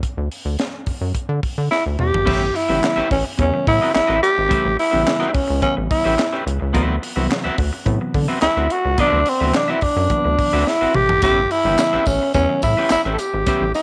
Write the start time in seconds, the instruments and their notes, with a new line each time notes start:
0.03 kick, closed hi-hat
0.17 analog synth bass D2
0.32 open hi-hat
0.45 analog synth bass D2
0.59 snare, closed hi-hat
0.86 analog synth bass F#2, kick, open hi-hat
1.01 analog synth bass F#2
1.15 kick, closed hi-hat
1.29 analog synth bass D3
1.43 kick, open hi-hat
1.58 analog synth bass D3
1.71 tenor saxophone E4, snare
1.86 analog synth bass D2
1.99 analog synth bass E2, tenor saxophone G4, mid tom
2.14 analog synth bass G#1, floor tom
2.25 analog synth bass A1, reed electric piano C#3 E3 G3 B3, clean electric guitar C#4 G4 B4 E5, kick, crash
2.54 tenor saxophone E4, muted clean electric guitar stroke, open hi-hat
2.69 analog synth bass G1, reed electric piano C#3 E3 G3 B3, clean electric guitar C#4 G4 B4 E5
2.82 muted clean electric guitar stroke, snare, clap, closed hi-hat
2.96 analog synth bass A1, clean electric guitar C#4 G4 B4 E5
3.10 analog synth bass A1, tenor saxophone C#4, muted clean electric guitar stroke, kick, open hi-hat
3.25 muted clean electric guitar stroke
3.38 analog synth bass E2, reed electric piano C3 E3 G3 B3, tenor saxophone C#4, muted clean electric guitar stroke, kick, closed hi-hat
3.45 reed electric piano C#3
3.54 muted clean electric guitar stroke
3.67 analog synth bass A2, tenor saxophone E4, kick, open hi-hat
3.82 clean electric guitar C#4 G4 B4 E5
3.94 analog synth bass A1, tenor saxophone E4, muted clean electric guitar stroke, snare, clap, closed hi-hat
4.08 analog synth bass A1, clean electric guitar C#4 G4 B4 E5
4.21 tenor saxophone G4, muted clean electric guitar stroke, closed hi-hat
4.36 analog synth bass G#1, muted clean electric guitar stroke
4.49 reed electric piano C#3 E3 G3 A3, clean electric guitar C#4 G4 B4 E5, kick, closed hi-hat
4.65 analog synth bass A1
4.76 tenor saxophone E4, muted clean electric guitar stroke, open hi-hat
4.91 analog synth bass A1, reed electric piano C#3 E3 G3 B3, clean electric guitar C#4 G4 B4 E5
5.04 muted clean electric guitar stroke, snare, clap, closed hi-hat
5.20 clean electric guitar C#4 G4 B4 E5
5.33 analog synth bass C#2, tenor saxophone C#4, muted clean electric guitar stroke, kick, open hi-hat
5.48 analog synth bass C#2, muted clean electric guitar stroke
5.61 reed electric piano C#3 E3 G3 B3, tenor saxophone C#4, muted clean electric guitar stroke, kick, closed hi-hat
5.77 analog synth bass A1, muted clean electric guitar stroke
5.91 tenor saxophone E4, kick, open hi-hat
6.04 analog synth bass A1, clean electric guitar C#4 G4 B4 E5
6.17 muted clean electric guitar stroke, snare, clap, closed hi-hat
6.32 clean electric guitar C#4 G4 B4 E5
6.46 analog synth bass C#2, muted clean electric guitar stroke, closed hi-hat
6.60 analog synth bass C#2, muted clean electric guitar stroke
6.73 analog synth bass D2, reed electric piano C3 E3 F#3 B3, clean electric guitar C4 F#4 B4 E5, kick, closed hi-hat
7.02 muted clean electric guitar stroke, open hi-hat
7.16 analog synth bass C2, reed electric piano C3 E3 F#3 B3, clean electric guitar C4 F#4 B4 E5
7.29 muted clean electric guitar stroke, snare, clap, closed hi-hat
7.44 analog synth bass D2, clean electric guitar C4 F#4 B4 E5
7.58 analog synth bass D2, muted clean electric guitar stroke, kick, open hi-hat
7.73 muted clean electric guitar stroke
7.85 analog synth bass A2, reed electric piano C3 E3 F#3 B3, muted clean electric guitar stroke, kick, closed hi-hat
8.01 muted clean electric guitar stroke
8.14 analog synth bass D3, kick, open hi-hat
8.28 clean electric guitar C4 F#4 B4 E5
8.42 analog synth bass D2, tenor saxophone E4, snare, clap, closed hi-hat
8.57 analog synth bass D2, clean electric guitar C4 F#4 B4 E5
8.70 tenor saxophone F#4, closed hi-hat
8.85 analog synth bass C#2, muted clean electric guitar stroke
8.98 reed electric piano C3 E3 F#3 B3, clean electric guitar C4 F#4 B4 E5, tenor saxophone D4, kick, closed hi-hat
9.12 analog synth bass D2
9.26 tenor saxophone C4, muted clean electric guitar stroke, open hi-hat
9.40 analog synth bass D2, reed electric piano C3 E3 F#3 B3, clean electric guitar C4 F#4 B4 E5
9.54 tenor saxophone D4, muted clean electric guitar stroke, snare, clap, closed hi-hat
9.68 clean electric guitar C4 F#4 B4 E5, tenor saxophone E4
9.81 analog synth bass F#2, tenor saxophone D4, kick, open hi-hat
9.96 analog synth bass F#2, muted clean electric guitar stroke
10.10 reed electric piano C3 E3 F#3 A#3, muted clean electric guitar stroke, kick, closed hi-hat
10.17 reed electric piano B3
10.25 analog synth bass D2, muted clean electric guitar stroke
10.39 kick, open hi-hat
10.53 analog synth bass D2, clean electric guitar C4 F#4 B4 E5
10.66 tenor saxophone E4, muted clean electric guitar stroke, snare
10.81 analog synth bass A1, clean electric guitar C4 F#4 B4 E5
10.95 analog synth bass A1, tenor saxophone G4, muted clean electric guitar stroke, mid tom
11.09 muted clean electric guitar stroke, floor tom
11.22 analog synth bass A1, reed electric piano C#3 E3 G3 B3, clean electric guitar C#4 G4 B4 E5, tenor saxophone G4, kick, closed hi-hat, tambourine
11.51 tenor saxophone E4, muted clean electric guitar stroke, open hi-hat
11.64 analog synth bass G1, reed electric piano C#3 E3 G3 B3, clean electric guitar C#4 G4 B4 E5
11.78 muted clean electric guitar stroke, snare, clap, closed hi-hat, tambourine
11.93 analog synth bass A1, clean electric guitar C#4 G4 B4 E5
12.06 analog synth bass A1, tenor saxophone C#4, muted clean electric guitar stroke, kick, open hi-hat, tambourine
12.22 muted clean electric guitar stroke
12.34 analog synth bass E2, reed electric piano C#3 E3 G3 B3, tenor saxophone C#4, muted clean electric guitar stroke, kick, closed hi-hat, tambourine
12.49 muted clean electric guitar stroke
12.62 analog synth bass A2, tenor saxophone E4, kick, open hi-hat, tambourine
12.77 clean electric guitar C#4 G4 B4 E5
12.90 analog synth bass A1, tenor saxophone E4, muted clean electric guitar stroke, snare, clap, closed hi-hat, tambourine
13.05 analog synth bass A1, clean electric guitar C#4 G4 B4 E5
13.13 tenor saxophone A4
13.18 tenor saxophone G4, muted clean electric guitar stroke, closed hi-hat, tambourine
13.34 analog synth bass G#1, muted clean electric guitar stroke
13.46 reed electric piano C#3 E3 G3 B3, clean electric guitar C#4 G4 B4 E5, kick, closed hi-hat, tambourine
13.61 analog synth bass A1
13.74 tenor saxophone E4, muted clean electric guitar stroke, open hi-hat, tambourine